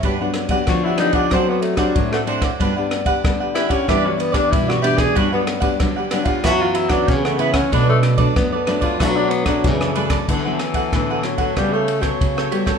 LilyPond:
<<
  \new Staff \with { instrumentName = "Cavaquinho" } { \time 4/4 \key b \minor \tempo 4 = 94 <d' g' b' fis''>16 <g' b' fis''>8 <g' b' fis''>16 r16 <g' b' fis''>16 <d' g' b' fis''>16 <g' b' fis''>16 <d' c'' d'' fis''>16 <c'' d'' fis''>16 r16 <c'' d'' fis''>8 <c'' d'' fis''>16 <d' c'' d'' fis''>16 <c'' d'' fis''>16 | <d' g' b' fis''>16 <g' b' fis''>8 <g' b' fis''>16 r16 <g' b' fis''>16 <d' g' b' fis''>16 <g' b' fis''>16 <e' g' b' d''>16 <g' b' d''>16 r16 <g' b' d''>8 <g' b' d''>16 <e' g' b' d''>16 <g' b' d''>16 | <d' g' b' fis''>16 <g' b' fis''>8 <g' b' fis''>16 r16 <g' b' fis''>16 <d' g' b' fis''>16 <g' b' fis''>16 <e' b' cis'' fis''>16 <b' cis'' fis''>16 r16 <b' cis'' fis''>8 <b' cis'' fis''>16 <e' b' cis'' fis''>16 <b' cis'' fis''>16 | <d' a' b' d''>16 <a' b' d''>8 <a' b' d''>16 r16 <a' b' d''>16 <d' a' b' d''>16 <a' b' d''>16 <d' a' b' d''>16 <a' b' d''>16 r16 <a' b' d''>8 <a' b' d''>16 <d' a' b' d''>16 <a' b' d''>16 |
\key d \major <d' a' b' fis''>16 <a' b' fis''>16 r16 <a' b' fis''>16 <d' a' b' fis''>16 <a' b' fis''>16 r16 <a' b' fis''>16 <g' a' cis'' g''>16 <a' cis'' g''>8 <a' cis'' g''>8 <a' cis'' g''>16 <g' a' cis'' g''>16 <a' cis'' g''>16 | }
  \new Staff \with { instrumentName = "Tenor saxophone" } { \time 4/4 \key b \minor r4 fis'16 e'16 dis'16 d'16 c'16 b16 a16 g16 fis16 a16 r8 | r4. e'16 cis'16 d'16 fis16 b16 d'16 e'16 fis'16 g'16 gis'16 | fis'16 b16 r4 r16 eis'16 fis'16 eis'16 e'16 d'16 cis'16 a16 b16 cis'16 | d'16 a16 r4 r16 eis'16 fis'16 d'16 b16 fis16 e8. r16 |
\key d \major e4. fis8 g16 a8 fis4~ fis16 | }
  \new Staff \with { instrumentName = "Nylon-string guitar" } { \time 4/4 \key b \minor << { <fis b d'>16 <fis b d'>8 <fis b d'>16 <fis b d'>8 <fis b d'>8 <c' d' a'>8. <c' d' a'>8. <c' d' a'>16 r16 | <fis b d'>16 <b d'>8. <b d'>8. r16 <e b d'>8. <e b d'>8. <e b d'>8 | <fis b d'>16 <fis b d'>8 <fis b d'>16 <fis b d'>16 r16 <fis b d'>8 <e b cis'>8. <e b cis'>8. <e b cis'>8 | <fis a d'>16 <fis a d'>8 <fis a d'>16 <fis a d'>16 r16 <fis a d'>8 <fis a d'>8. <fis a d'>8. <fis a d'>8 |
\key d \major <fis b e'>16 <fis b e'>8. <fis b e'>4 <g b fis'>8 r16 b8. <g b fis'>8 | } \\ { g,4 d4 fis4 fis4 | g,4 d4 g,4 g,4 | g,4 d4 fis,4 cis4 | b,4 fis,4 b,4 fis,4 |
d4 a,4 cis4 cis4 | } >> }
  \new Staff \with { instrumentName = "Nylon-string guitar" } { \clef bass \time 4/4 \key b \minor g4 eis4 fis4 a,4 | g4 g4 g4 b,4 | g4 g4 fis4 cis4 | b,4 b4 fis4 cis4 |
\key d \major d8 r8 d4 cis4 cis8 r8 | }
  \new DrumStaff \with { instrumentName = "Drums" } \drummode { \time 4/4 <bd cymr>8 <cymr ss>16 <bd cymr>16 <bd cymr ss>8 <cymr ss>16 <bd cymr>16 <bd cymr ss>8 cymr16 <bd cymr ss>16 <bd cymr>16 ss16 cymr16 <bd cymr ss>16 | <bd cymr>8 <cymr ss>16 <bd cymr>16 <bd cymr ss>8 <cymr ss>16 <bd cymr>16 <bd cymr ss>8 cymr16 <bd cymr ss>16 <bd cymr>16 ss16 cymr16 <bd cymr ss>16 | <bd cymr>8 <cymr ss>16 <bd cymr>16 <bd cymr ss>8 <cymr ss>16 <bd cymr>16 <bd cymr ss>8 cymr16 <bd cymr ss>16 <bd cymr>16 ss16 cymr16 <bd cymr ss>16 | <bd cymr>8 <cymr ss>16 <bd cymr>16 <bd cymr ss>8 <cymr ss>16 <bd cymr>16 <bd cymr ss>8 cymr16 <bd cymr ss>16 <bd cymr>16 ss16 cymr16 <bd cymr ss>16 |
<cymc bd>8 <cymr ss>16 <bd cymr>16 <bd cymr ss>8 <cymr ss>16 <bd cymr>16 <bd cymr ss>8 cymr16 <bd cymr ss>16 <bd cymr>16 ss16 cymr16 <bd cymr ss>16 | }
>>